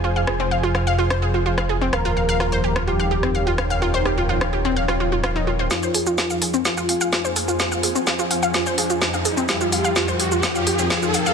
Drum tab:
HH |----------------|----------------|----------------|--o---o---o---o-|
SH |----------------|----------------|----------------|xxxxxx-xxx-xxxxx|
SD |--r---r--r---r--|r---r--r---r--r-|--r--r---r--r---|o---o---o---o---|

HH |--o---o---o---o-|--o---o---o---o-|
SH |xxxxxx-xxx-xxxxx|xxxxxx-xxx-xxxxx|
SD |o---o---o---o---|o---o---o---o---|